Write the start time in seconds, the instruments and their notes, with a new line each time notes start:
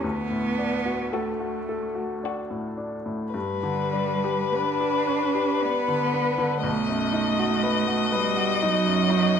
0.04 grand piano D2, cello B3
0.30 grand piano A2
0.58 grand piano D4
0.85 grand piano F#4
1.13 cello A3, violin F#4, grand piano A4
1.40 grand piano F#4
1.69 grand piano A4
1.95 grand piano F#4
2.23 grand piano D4, violin F#4
2.51 grand piano A2
2.77 grand piano D4
3.06 grand piano A2
3.34 grand piano G2, cello G3, violin B4
3.63 grand piano D3
3.93 grand piano D4
4.24 grand piano G4
4.53 cello D4, grand piano B4
4.81 grand piano G4
5.07 grand piano B4
5.35 grand piano G4
5.62 cello B3, grand piano D4
5.88 grand piano D3
6.13 grand piano D4
6.38 grand piano D3
6.63 grand piano B1, cello A3, violin D#5
6.88 grand piano F#2
7.13 grand piano D#4
7.39 grand piano F#4
7.63 grand piano B4
7.88 grand piano F#4
8.12 cello G3, grand piano B4
8.37 grand piano F#4
8.62 cello F#3, grand piano D#4
8.86 grand piano F#2
9.10 grand piano D#4
9.34 grand piano F#2